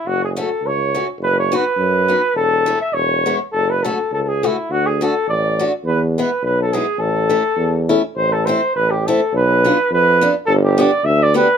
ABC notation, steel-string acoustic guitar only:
X:1
M:2/4
L:1/8
Q:"Swing" 1/4=104
K:A
V:1 name="Steel-string acoustic guitar"
z [A,CF] z [A,CF] | z [B,^DF] z [B,DF] | z [A,CE] z [G,B,E] | z [A,CF] z [A,CF] |
z [A,DF] z [A,DF] | z [G,B,E] z [G,B,E] | z [A,CE] z [A,CE] | [K:Am] z [A,CE] z [A,CE] |
z [B,DF] z [B,DF] | z [B,DG] z [B,DG] |]